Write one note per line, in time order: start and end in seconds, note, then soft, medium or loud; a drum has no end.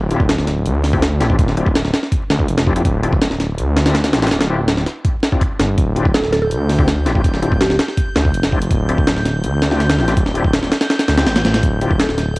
0.00 0.67 D1 loud
0.11 0.21 C4 medium
0.11 0.21 D4 medium
0.11 0.21 E4 medium
0.11 0.21 F4 medium
0.11 0.21 G4 medium
0.11 closed hi-hat medium
0.20 kick medium
0.29 snare loud
0.29 closed hi-hat medium
0.38 snare soft
0.47 snare soft
0.47 closed hi-hat medium
0.66 1.22 D2 medium
0.66 closed hi-hat medium
0.84 snare soft
0.84 open hi-hat medium
0.93 1.04 C4 medium
0.93 1.04 D4 medium
0.93 1.04 E4 medium
0.93 1.04 F4 medium
0.93 1.04 G4 medium
0.93 kick medium
1.02 snare loud
1.02 closed hi-hat medium
1.20 1.37 A1 medium
1.20 1.27 C4 medium
1.20 1.27 D4 medium
1.20 1.27 E4 medium
1.20 1.27 F4 medium
1.20 1.27 G4 medium
1.20 snare medium
1.20 closed hi-hat medium
1.30 1.36 C4 loud
1.30 1.36 D4 medium
1.30 1.36 E4 medium
1.30 1.36 F4 medium
1.30 1.36 G4 loud
1.30 kick loud
1.39 1.92 D1 loud
1.39 kick loud
1.39 closed hi-hat medium
1.48 snare soft
1.57 1.68 C4 medium
1.57 1.68 D4 medium
1.57 1.68 E4 medium
1.57 1.68 F4 medium
1.57 1.68 G4 medium
1.57 closed hi-hat medium
1.66 kick medium
1.75 snare loud
1.75 closed hi-hat medium
1.85 snare medium
1.94 snare loud
1.94 closed hi-hat medium
2.03 snare soft
2.12 kick loud
2.12 closed hi-hat medium
2.30 2.47 D2 medium
2.30 snare loud
2.30 closed hi-hat medium
2.40 kick medium
2.48 2.84 F1 medium
2.48 closed hi-hat medium
2.58 snare loud
2.58 closed hi-hat medium
2.67 2.73 C4 medium
2.67 2.73 D4 medium
2.67 2.73 E4 medium
2.67 2.74 F4 medium
2.67 2.73 G4 medium
2.67 kick medium
2.76 2.83 C4 loud
2.76 2.83 D4 medium
2.76 2.83 E4 medium
2.76 2.83 F4 medium
2.76 2.83 G4 loud
2.76 closed hi-hat medium
2.85 3.60 D1 loud
2.85 kick loud
2.85 closed hi-hat medium
3.03 3.14 C4 medium
3.03 3.14 D4 medium
3.03 3.14 E4 medium
3.03 3.14 F4 medium
3.03 3.14 G4 medium
3.03 closed hi-hat medium
3.13 kick loud
3.22 snare loud
3.22 closed hi-hat medium
3.31 snare soft
3.40 snare medium
3.40 closed hi-hat medium
3.58 4.15 D2 medium
3.58 closed hi-hat medium
3.77 snare loud
3.77 closed hi-hat medium
3.86 3.96 C4 medium
3.86 3.96 D4 medium
3.86 3.96 E4 medium
3.86 3.96 F4 medium
3.86 3.96 G4 medium
3.86 snare loud
3.86 closed hi-hat medium
3.95 snare loud
3.95 closed hi-hat medium
4.04 snare loud
4.04 closed hi-hat medium
4.13 4.30 A1 medium
4.13 4.20 C4 medium
4.13 4.20 D4 medium
4.13 4.20 E4 medium
4.13 4.20 F4 medium
4.13 4.20 G4 medium
4.13 snare loud
4.13 closed hi-hat medium
4.22 4.29 C4 loud
4.22 4.29 D4 medium
4.22 4.29 E4 medium
4.22 4.29 F4 medium
4.22 4.29 G4 loud
4.22 snare medium
4.22 closed hi-hat medium
4.27 snare medium
4.27 closed hi-hat medium
4.31 4.85 D1 loud
4.31 snare loud
4.31 closed hi-hat medium
4.41 snare loud
4.41 closed hi-hat medium
4.50 4.60 C4 medium
4.50 4.60 D4 medium
4.50 4.60 E4 medium
4.50 4.60 F4 medium
4.50 4.60 G4 medium
4.68 snare loud
4.68 closed hi-hat medium
4.77 snare medium
4.86 snare medium
4.86 closed hi-hat medium
5.05 kick loud
5.05 closed hi-hat medium
5.23 snare loud
5.23 closed hi-hat medium
5.32 5.43 C4 medium
5.32 5.43 D4 medium
5.32 5.43 E4 medium
5.32 5.43 F4 medium
5.32 5.43 G4 medium
5.32 kick loud
5.41 kick loud
5.41 closed hi-hat medium
5.59 5.76 G1 loud
5.59 snare loud
5.59 closed hi-hat medium
5.78 6.53 D1 loud
5.78 12.39 G6 medium
5.78 kick loud
5.78 closed hi-hat medium
5.96 6.07 C4 medium
5.96 6.07 D4 medium
5.96 6.07 E4 medium
5.96 6.07 F4 medium
5.96 6.07 G4 medium
5.96 closed hi-hat medium
6.05 kick medium
6.14 6.31 A4 medium
6.14 snare loud
6.14 closed hi-hat medium
6.24 snare soft
6.32 6.38 A4 medium
6.32 snare medium
6.32 closed hi-hat medium
6.42 6.48 A4 medium
6.51 7.08 D2 medium
6.51 closed hi-hat medium
6.69 snare soft
6.69 open hi-hat medium
6.79 6.89 C4 medium
6.79 6.89 D4 medium
6.79 6.89 E4 medium
6.79 6.89 F4 medium
6.79 6.89 G4 medium
6.79 kick loud
6.88 snare loud
6.88 closed hi-hat medium
7.06 7.22 A1 medium
7.06 7.12 C4 medium
7.06 7.12 D4 medium
7.06 7.12 E4 medium
7.06 7.12 F4 medium
7.06 7.12 G4 medium
7.06 snare medium
7.06 closed hi-hat medium
7.15 7.22 C4 loud
7.15 7.22 D4 medium
7.15 7.22 E4 medium
7.15 7.22 F4 medium
7.15 7.22 G4 loud
7.15 kick medium
7.24 7.78 D1 loud
7.24 kick loud
7.24 closed hi-hat medium
7.34 snare soft
7.42 7.53 C4 medium
7.42 7.53 D4 medium
7.42 7.53 E4 medium
7.42 7.53 F4 medium
7.42 7.53 G4 medium
7.42 closed hi-hat medium
7.52 kick loud
7.61 7.97 G4 medium
7.61 snare loud
7.61 closed hi-hat medium
7.70 snare medium
7.79 snare loud
7.79 closed hi-hat medium
7.88 snare soft
7.97 kick loud
7.97 closed hi-hat medium
8.16 8.32 D2 medium
8.16 snare loud
8.16 closed hi-hat medium
8.25 kick loud
8.34 8.69 F1 medium
8.34 closed hi-hat medium
8.43 snare loud
8.43 closed hi-hat medium
8.52 8.59 C4 medium
8.52 8.59 D4 medium
8.52 8.59 E4 medium
8.52 8.59 F4 medium
8.52 8.59 G4 medium
8.52 kick medium
8.62 closed hi-hat medium
8.71 9.45 D1 loud
8.71 kick loud
8.71 closed hi-hat medium
8.89 8.99 C4 medium
8.89 8.99 D4 medium
8.89 8.99 E4 medium
8.89 8.99 F4 medium
8.89 8.99 G4 medium
8.89 closed hi-hat medium
8.98 kick medium
9.07 snare loud
9.07 closed hi-hat medium
9.16 snare soft
9.25 snare medium
9.25 closed hi-hat medium
9.44 10.00 D2 medium
9.44 closed hi-hat medium
9.62 snare loud
9.62 closed hi-hat medium
9.71 9.82 C4 medium
9.71 9.82 D4 medium
9.71 9.82 E4 medium
9.71 9.82 F4 medium
9.71 9.82 G4 medium
9.71 snare soft
9.80 snare soft
9.80 closed hi-hat medium
9.90 snare loud
9.90 closed hi-hat medium
9.98 10.15 A1 medium
9.98 10.05 C4 medium
9.98 10.05 D4 medium
9.98 10.05 E4 medium
9.98 10.05 F4 medium
9.98 10.05 G4 medium
9.98 snare soft
10.08 10.14 C4 loud
10.08 10.14 D4 medium
10.08 10.14 E4 medium
10.08 10.14 F4 medium
10.08 10.14 G4 loud
10.08 snare soft
10.08 closed hi-hat medium
10.17 10.70 D1 loud
10.17 kick loud
10.17 closed hi-hat medium
10.26 snare soft
10.35 10.46 C4 medium
10.35 10.46 D4 medium
10.35 10.46 E4 medium
10.35 10.46 F4 medium
10.35 10.46 G4 medium
10.35 closed hi-hat medium
10.44 kick medium
10.53 snare loud
10.53 closed hi-hat medium
10.63 snare medium
10.72 snare loud
10.72 closed hi-hat medium
10.81 snare loud
10.81 closed hi-hat medium
10.90 snare loud
10.90 closed hi-hat medium
10.99 snare loud
10.99 closed hi-hat medium
11.08 11.25 D2 medium
11.08 snare loud
11.08 closed hi-hat medium
11.17 11.28 C4 medium
11.17 11.28 D4 medium
11.17 11.28 E4 medium
11.17 11.28 F4 medium
11.17 11.28 G4 medium
11.17 snare loud
11.17 closed hi-hat medium
11.27 11.43 A1 medium
11.27 snare loud
11.27 closed hi-hat medium
11.36 snare loud
11.36 closed hi-hat medium
11.45 11.61 A1 medium
11.45 snare loud
11.45 closed hi-hat medium
11.54 snare loud
11.54 closed hi-hat medium
11.63 12.38 D1 loud
11.63 kick loud
11.63 closed hi-hat medium
11.81 11.92 C4 medium
11.81 11.92 D4 medium
11.81 11.92 E4 medium
11.81 11.92 F4 medium
11.81 11.92 G4 medium
11.81 closed hi-hat medium
11.91 kick medium
12.00 12.16 A4 medium
12.00 snare loud
12.00 closed hi-hat medium
12.09 snare soft
12.18 snare medium
12.18 closed hi-hat medium